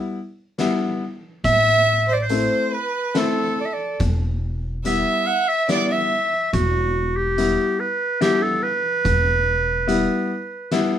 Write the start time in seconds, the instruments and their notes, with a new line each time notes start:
Already playing: upright piano G3 B3 E4
0.58 upright piano G3 B3 E4, snare, closed hi-hat
1.44 upright bass A1, clarinet E5, violin E5, kick, closed hi-hat
2.09 violin C5, clarinet C5
2.13 clarinet D5
2.22 clarinet C5, violin C5
2.29 upright piano A3 C4 E4, closed hi-hat
2.73 violin B4, clarinet B4
3.14 upright piano A3 C4 E4, violin A4, clarinet A4, snare, closed hi-hat
3.61 clarinet D5
3.65 clarinet E5
3.74 clarinet D5
4.00 upright bass E1, kick, closed hi-hat
4.84 upright piano G3 B3 E4, violin E5, clarinet E5, closed hi-hat
5.27 clarinet F#5
5.48 clarinet E5
5.68 upright piano G3 B3 E4, violin D5, clarinet D5, snare, closed hi-hat
5.91 violin E5, clarinet E5
6.53 upright bass E1, clarinet F#4, kick, closed hi-hat
7.17 clarinet G4
7.38 upright piano G3 B3 E4, closed hi-hat
7.80 clarinet B4
8.20 upright piano G3 B3 E4, clarinet G4, snare, closed hi-hat
8.42 clarinet A4
8.63 clarinet B4
9.05 upright bass E1, kick, closed hi-hat
9.87 upright piano G3 B3 E4, closed hi-hat
10.71 upright piano G3 B3 E4, snare, closed hi-hat